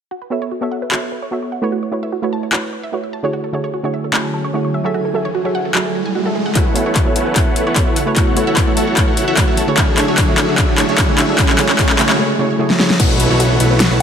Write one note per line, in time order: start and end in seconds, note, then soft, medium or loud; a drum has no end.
0.11 0.18 F#4 medium
0.22 0.28 B4 medium
0.30 0.38 B3 medium
0.30 0.38 F#4 medium
0.30 0.38 A4 medium
0.30 0.36 B4 medium
0.30 0.39 C#5 medium
0.30 0.39 E5 medium
0.42 0.51 C#5 medium
0.51 0.61 F#4 medium
0.61 0.89 B3 medium
0.61 0.89 F#4 medium
0.61 0.89 A4 medium
0.61 0.68 C#5 medium
0.61 0.90 C#5 medium
0.61 0.90 E5 medium
0.72 0.76 F#5 medium
0.82 0.89 B4 medium
0.91 1.29 B3 medium
0.91 1.29 F#4 medium
0.91 0.99 F#4 loud
0.91 1.30 A4 medium
0.91 1.30 C#5 medium
0.91 1.30 E5 medium
0.91 clap medium
1.02 1.09 B4 medium
1.12 1.16 B4 medium
1.22 1.31 C#5 loud
1.31 1.60 B3 medium
1.31 1.60 F#4 medium
1.31 1.42 F#4 medium
1.31 1.60 A4 medium
1.31 1.60 C#5 medium
1.31 1.61 E5 medium
1.42 1.49 C#5 medium
1.52 1.56 F#5 medium
1.62 1.90 A3 medium
1.62 1.90 E4 medium
1.62 1.90 F#4 medium
1.62 1.69 B4 medium
1.62 1.90 B4 medium
1.62 1.91 C#5 medium
1.72 1.79 F#4 medium
1.83 1.89 C#5 medium
1.91 1.99 A3 medium
1.91 1.99 E4 medium
1.91 1.99 F#4 medium
1.91 2.00 B4 medium
1.91 1.97 C#5 medium
1.91 2.00 C#5 medium
2.03 2.12 E5 medium
2.12 2.22 F#4 medium
2.22 2.50 A3 medium
2.22 2.50 E4 medium
2.22 2.50 F#4 medium
2.22 2.51 B4 medium
2.22 2.51 C#5 medium
2.22 2.30 E5 medium
2.33 2.37 A5 medium
2.43 2.50 C#5 medium
2.52 2.90 A3 medium
2.52 2.90 E4 medium
2.52 2.91 F#4 medium
2.52 2.60 F#4 loud
2.52 2.91 B4 medium
2.52 2.91 C#5 medium
2.52 clap medium
2.63 2.70 C#5 medium
2.73 2.77 C#5 medium
2.83 2.93 E5 medium
2.92 3.21 A3 medium
2.92 3.21 E4 medium
2.92 3.21 F#4 medium
2.92 3.03 F#4 medium
2.92 3.21 B4 medium
2.92 3.22 C#5 medium
3.04 3.10 E5 medium
3.13 3.17 A5 medium
3.23 3.51 D3 medium
3.23 3.51 A3 medium
3.23 3.51 E4 medium
3.23 3.51 F#4 medium
3.23 3.51 G#4 medium
3.23 3.30 C#5 medium
3.23 3.52 C#5 loud
3.33 4.93 D3 medium
3.33 4.93 F#3 medium
3.33 4.93 C#4 medium
3.33 6.52 E4 medium
3.33 3.40 F#4 medium
3.33 6.52 G#5 medium
3.33 riser medium
3.44 3.50 A4 medium
3.52 3.60 D3 medium
3.52 3.60 A3 medium
3.52 3.60 E4 medium
3.52 3.61 F#4 medium
3.52 3.61 G#4 medium
3.52 3.58 A4 medium
3.52 3.61 C#5 medium
3.64 3.73 C#5 medium
3.74 3.84 F#4 medium
3.83 4.11 D3 medium
3.83 4.11 A3 medium
3.83 4.11 E4 medium
3.83 4.12 F#4 medium
3.83 4.12 G#4 medium
3.83 3.91 C#5 medium
3.83 4.12 C#5 medium
3.94 3.98 E5 medium
4.04 4.11 A4 medium
4.13 4.51 D3 medium
4.13 4.51 A3 medium
4.13 4.52 E4 medium
4.13 4.21 F#4 loud
4.13 4.52 F#4 medium
4.13 4.52 G#4 medium
4.13 4.52 C#5 medium
4.13 clap medium
4.24 4.31 A4 medium
4.34 4.38 A4 medium
4.44 4.54 C#5 medium
4.53 4.82 D3 medium
4.53 4.82 A3 medium
4.53 4.82 E4 medium
4.53 4.64 F#4 medium
4.53 4.82 F#4 medium
4.53 4.82 G#4 medium
4.53 4.83 C#5 medium
4.65 4.71 C#5 medium
4.74 4.79 E5 medium
4.84 5.12 F#3 medium
4.84 5.12 F#4 medium
4.84 5.12 G#4 medium
4.84 4.91 A4 medium
4.84 5.12 A4 medium
4.84 5.13 E5 loud
4.94 6.54 F#3 medium
4.94 6.54 A3 medium
4.94 5.02 F#4 loud
5.05 5.11 A4 medium
5.13 5.21 F#3 medium
5.13 5.21 F#4 medium
5.13 5.22 G#4 medium
5.13 5.19 A4 medium
5.13 5.22 A4 medium
5.13 5.22 E5 medium
5.25 5.34 C#5 medium
5.35 5.45 F#4 medium
5.44 5.72 F#3 medium
5.44 5.72 F#4 medium
5.44 5.73 G#4 medium
5.44 5.73 A4 medium
5.44 5.52 C#5 medium
5.44 5.73 E5 medium
5.55 5.59 F#5 medium
5.65 5.72 A4 medium
5.74 6.12 F#3 medium
5.74 6.13 F#4 medium
5.74 5.82 F#4 medium
5.74 6.13 G#4 medium
5.74 6.13 A4 medium
5.74 6.13 E5 medium
5.74 clap medium
5.85 5.92 A4 medium
5.95 6.05 F#4 medium
6.06 6.12 G#5 medium
6.15 6.22 F#4 medium
6.25 6.54 F#3 medium
6.25 6.54 F#4 medium
6.25 6.54 G#4 medium
6.25 6.32 A4 medium
6.25 6.55 A4 medium
6.25 6.55 E5 medium
6.35 6.40 G#4 medium
6.46 6.50 F#5 medium
6.55 9.74 C#3 medium
6.55 8.15 B3 medium
6.55 12.15 E4 medium
6.55 6.84 E4 medium
6.55 6.63 F#4 medium
6.55 8.15 A4 medium
6.55 6.84 A4 medium
6.55 6.84 B4 medium
6.55 6.84 C#5 medium
6.55 6.84 F#5 medium
6.55 kick medium
6.55 clap soft
6.55 closed hi-hat medium
6.55 riser medium
6.66 6.73 B4 medium
6.75 6.82 B3 medium
6.75 6.82 F#4 medium
6.75 6.83 A4 medium
6.75 6.80 B4 medium
6.75 6.83 C#5 medium
6.75 6.83 E5 medium
6.75 closed hi-hat medium
6.86 7.14 E4 medium
6.86 7.14 A4 medium
6.86 7.14 B4 medium
6.86 6.95 C#5 loud
6.86 7.14 C#5 medium
6.86 7.14 F#5 medium
6.96 7.06 F#4 medium
6.96 kick medium
6.96 clap soft
6.96 closed hi-hat medium
7.05 7.33 B3 medium
7.05 7.33 F#4 medium
7.05 7.34 A4 medium
7.05 7.13 C#5 medium
7.05 7.34 C#5 medium
7.05 7.34 E5 medium
7.16 7.44 E4 medium
7.16 7.44 A4 medium
7.16 7.44 B4 medium
7.16 7.44 C#5 medium
7.16 7.44 F#5 medium
7.16 7.20 F#5 medium
7.16 closed hi-hat medium
7.26 7.33 B4 medium
7.35 7.73 B3 medium
7.35 7.74 F#4 medium
7.35 7.43 F#4 loud
7.35 7.74 A4 medium
7.35 7.74 C#5 medium
7.35 7.74 E5 medium
7.35 kick medium
7.35 clap soft
7.35 closed hi-hat medium
7.47 7.64 E4 medium
7.47 7.64 A4 medium
7.47 7.53 B4 medium
7.47 7.64 B4 medium
7.47 7.64 C#5 medium
7.47 7.64 F#5 medium
7.56 7.60 B4 medium
7.56 closed hi-hat medium
7.67 7.84 E4 loud
7.67 7.84 A4 medium
7.67 7.84 B4 medium
7.67 7.84 C#5 medium
7.67 7.76 C#5 loud
7.67 7.84 F#5 loud
7.75 8.04 B3 medium
7.75 8.04 F#4 medium
7.75 7.86 F#4 medium
7.75 8.04 A4 medium
7.75 8.05 C#5 medium
7.75 8.05 E5 medium
7.75 kick loud
7.75 clap medium
7.75 closed hi-hat medium
7.87 8.00 E4 medium
7.87 8.00 A4 medium
7.87 8.00 B4 medium
7.87 8.00 C#5 medium
7.87 7.93 C#5 medium
7.87 8.00 F#5 medium
7.96 8.01 F#5 medium
7.96 closed hi-hat medium
8.06 8.34 A3 medium
8.06 8.34 E4 medium
8.06 8.34 F#4 medium
8.06 8.13 B4 medium
8.06 8.35 B4 medium
8.06 8.35 C#5 loud
8.16 11.35 F#3 medium
8.16 8.45 E4 medium
8.16 8.24 F#4 loud
8.16 8.45 F#4 medium
8.16 9.76 A4 medium
8.16 8.45 A4 medium
8.16 8.45 C#5 medium
8.16 8.45 F#5 medium
8.16 kick medium
8.16 clap medium
8.16 closed hi-hat medium
8.27 8.34 C#5 medium
8.36 8.43 A3 medium
8.36 8.43 E4 medium
8.36 8.44 F#4 medium
8.36 8.44 B4 medium
8.36 8.41 C#5 medium
8.36 8.44 C#5 medium
8.36 closed hi-hat medium
8.47 8.75 E4 medium
8.47 8.75 F#4 medium
8.47 8.75 A4 medium
8.47 8.75 C#5 medium
8.47 8.56 E5 loud
8.47 8.75 F#5 medium
8.57 8.67 F#4 medium
8.57 kick medium
8.57 clap medium
8.57 closed hi-hat medium
8.66 8.94 A3 medium
8.66 8.94 E4 medium
8.66 8.95 F#4 medium
8.66 8.95 B4 medium
8.66 8.95 C#5 loud
8.66 8.74 E5 medium
8.77 9.05 E4 medium
8.77 9.05 F#4 medium
8.77 9.05 A4 medium
8.77 9.05 C#5 medium
8.77 9.05 F#5 loud
8.77 8.81 A5 medium
8.77 closed hi-hat medium
8.87 8.94 C#5 medium
8.96 9.34 A3 medium
8.96 9.35 E4 medium
8.96 9.35 F#4 medium
8.96 9.04 F#4 loud
8.96 9.35 B4 medium
8.96 9.35 C#5 medium
8.96 kick medium
8.96 clap medium
8.96 closed hi-hat medium
9.08 9.25 E4 medium
9.08 9.25 F#4 medium
9.08 9.25 A4 medium
9.08 9.14 C#5 medium
9.08 9.25 C#5 medium
9.08 9.25 F#5 medium
9.17 9.21 C#5 medium
9.17 closed hi-hat medium
9.28 9.45 E4 loud
9.28 9.45 F#4 medium
9.28 9.45 A4 medium
9.28 9.45 C#5 medium
9.28 9.37 E5 loud
9.28 9.45 F#5 loud
9.36 9.65 A3 medium
9.36 9.65 E4 medium
9.36 9.65 F#4 medium
9.36 9.47 F#4 medium
9.36 9.66 B4 medium
9.36 9.66 C#5 medium
9.36 kick medium
9.36 clap medium
9.36 closed hi-hat medium
9.48 9.62 E4 medium
9.48 9.61 F#4 medium
9.48 9.62 A4 medium
9.48 9.61 C#5 medium
9.48 9.54 E5 medium
9.48 9.62 F#5 medium
9.57 9.62 A5 medium
9.57 closed hi-hat medium
9.67 9.77 D3 medium
9.67 9.77 A3 medium
9.67 9.77 E4 medium
9.67 9.78 F#4 medium
9.67 9.78 G#4 medium
9.67 9.75 C#5 medium
9.67 9.78 C#5 loud
9.78 11.37 D3 medium
9.78 11.37 C#4 medium
9.78 10.06 D4 medium
9.78 9.85 F#4 medium
9.78 10.06 F#4 medium
9.78 10.06 G#4 medium
9.78 11.37 G#4 medium
9.78 10.06 C#5 medium
9.78 10.06 E5 medium
9.78 kick medium
9.78 clap medium
9.78 closed hi-hat medium
9.88 9.95 A4 medium
9.97 10.04 D3 medium
9.97 10.04 A3 medium
9.97 10.05 E4 medium
9.97 10.05 F#4 medium
9.97 10.05 G#4 medium
9.97 10.02 A4 medium
9.97 10.05 C#5 medium
9.97 clap medium
9.97 closed hi-hat medium
10.08 10.36 D4 medium
10.08 10.36 F#4 medium
10.08 10.36 G#4 medium
10.08 10.17 C#5 medium
10.08 10.36 C#5 medium
10.08 10.36 E5 medium
10.18 10.28 F#4 medium
10.18 kick medium
10.18 clap medium
10.18 closed hi-hat medium
10.27 10.55 D3 medium
10.27 10.55 A3 medium
10.27 10.56 E4 medium
10.27 10.56 F#4 medium
10.27 10.56 G#4 medium
10.27 10.35 C#5 medium
10.27 10.56 C#5 medium
10.38 10.57 D4 medium
10.38 10.57 F#4 medium
10.38 10.57 G#4 medium
10.38 10.57 C#5 medium
10.38 10.42 E5 medium
10.38 10.57 E5 medium
10.38 clap medium
10.38 closed hi-hat medium
10.49 10.55 A4 medium
10.58 10.86 D4 medium
10.58 10.65 F#4 loud
10.58 10.86 G#4 medium
10.58 10.86 C#5 medium
10.58 kick loud
10.58 clap medium
10.58 closed hi-hat medium
10.69 10.75 A4 medium
10.77 10.85 D3 medium
10.77 10.85 A3 medium
10.77 10.85 E4 medium
10.77 10.85 F#4 medium
10.77 10.86 G#4 medium
10.77 10.83 A4 medium
10.77 10.86 C#5 medium
10.77 clap medium
10.77 closed hi-hat medium
10.89 11.16 D4 medium
10.89 11.16 F#4 medium
10.89 11.16 G#4 medium
10.89 10.98 C#5 loud
10.89 11.16 C#5 medium
10.89 11.16 E5 medium
10.98 11.08 F#4 medium
10.98 kick medium
10.98 clap medium
10.98 closed hi-hat medium
11.08 11.36 D3 medium
11.08 11.36 A3 medium
11.08 11.36 E4 medium
11.08 11.36 F#4 medium
11.08 11.37 G#4 medium
11.08 11.15 C#5 medium
11.08 11.37 C#5 medium
11.18 11.37 D4 medium
11.18 11.37 F#4 medium
11.18 11.37 G#4 medium
11.18 11.37 C#5 medium
11.18 11.23 E5 medium
11.18 11.37 E5 loud
11.18 clap medium
11.18 closed hi-hat medium
11.29 11.36 A4 medium
11.39 11.67 C#4 medium
11.39 11.46 F#4 loud
11.39 11.67 F#4 medium
11.39 11.67 G#4 medium
11.39 11.67 C#5 medium
11.39 11.67 E5 medium
11.39 kick loud
11.39 clap medium
11.39 closed hi-hat medium
11.49 11.56 A4 medium
11.49 clap medium
11.58 11.65 C#3 medium
11.58 11.66 A3 medium
11.58 11.66 E4 medium
11.58 11.66 F#4 medium
11.58 11.66 G#4 medium
11.58 11.63 A4 medium
11.58 11.66 C#5 medium
11.58 clap medium
11.58 closed hi-hat medium
11.69 11.77 C#4 medium
11.69 11.77 F#4 medium
11.69 11.77 G#4 medium
11.69 11.77 C#5 loud
11.69 11.77 C#5 medium
11.69 11.77 E5 medium
11.69 clap medium
11.79 12.07 C#4 medium
11.79 11.86 F#4 loud
11.79 12.07 F#4 medium
11.79 12.07 G#4 medium
11.79 12.07 C#5 medium
11.79 kick loud
11.79 clap medium
11.79 closed hi-hat medium
11.89 11.96 A4 medium
11.89 clap medium
11.98 12.06 C#3 medium
11.98 12.06 A3 medium
11.98 12.06 E4 medium
11.98 12.06 F#4 medium
11.98 12.06 G#4 medium
11.98 12.03 A4 medium
11.98 12.07 C#5 medium
11.98 clap loud
11.98 closed hi-hat medium
12.10 12.18 C#4 medium
12.10 12.18 F#4 medium
12.10 12.18 G#4 medium
12.10 12.18 C#5 medium
12.10 12.18 C#5 loud
12.10 12.18 E5 medium
12.10 clap medium
12.18 12.26 C#3 medium
12.18 12.26 A3 medium
12.18 12.26 E4 medium
12.18 12.26 F#4 medium
12.18 12.27 G#4 medium
12.18 12.27 C#5 medium
12.38 12.46 C#3 medium
12.38 12.46 A3 medium
12.38 12.46 E4 medium
12.38 12.46 F#4 medium
12.38 12.47 G#4 medium
12.38 12.47 C#5 medium
12.58 12.66 C#3 medium
12.58 12.66 A3 medium
12.58 12.66 E4 medium
12.58 12.67 F#4 medium
12.58 12.67 G#4 medium
12.58 12.67 C#5 medium
12.70 snare medium
12.79 12.86 C#3 medium
12.79 12.86 A3 medium
12.79 12.87 E4 medium
12.79 12.87 F#4 medium
12.79 12.87 G#4 medium
12.79 12.87 C#5 loud
12.79 snare medium
12.90 snare medium
13.00 13.28 B1 loud
13.00 14.02 C#3 medium
13.00 14.02 A3 medium
13.00 14.02 B3 medium
13.00 14.02 E4 medium
13.00 13.28 E4 medium
13.00 13.07 F#4 loud
13.00 13.28 A4 medium
13.00 13.28 B4 medium
13.00 13.28 C#5 medium
13.00 13.28 F#5 loud
13.00 kick loud
13.00 closed hi-hat medium
13.00 crash loud
13.00 downlifter medium
13.10 13.17 B4 medium
13.20 13.24 B4 medium
13.20 closed hi-hat medium
13.30 13.58 B1 loud
13.30 13.58 E4 medium
13.30 13.58 A4 medium
13.30 13.58 B4 medium
13.30 13.58 C#5 medium
13.30 13.40 C#5 loud
13.30 13.58 F#5 medium
13.40 13.50 F#4 medium
13.40 closed hi-hat medium
13.51 13.57 C#5 medium
13.60 13.89 B1 loud
13.60 13.88 E4 medium
13.60 13.88 A4 medium
13.60 13.88 B4 medium
13.60 13.88 C#5 medium
13.60 13.64 F#5 medium
13.60 13.88 F#5 loud
13.60 closed hi-hat medium
13.71 13.77 B4 medium
13.80 13.87 F#4 loud
13.80 snare loud
13.80 closed hi-hat medium
13.91 14.02 B1 loud
13.91 14.02 E4 medium
13.91 14.02 A4 medium
13.91 14.02 B4 medium
13.91 13.97 B4 medium
13.91 14.02 C#5 medium
13.91 14.02 F#5 medium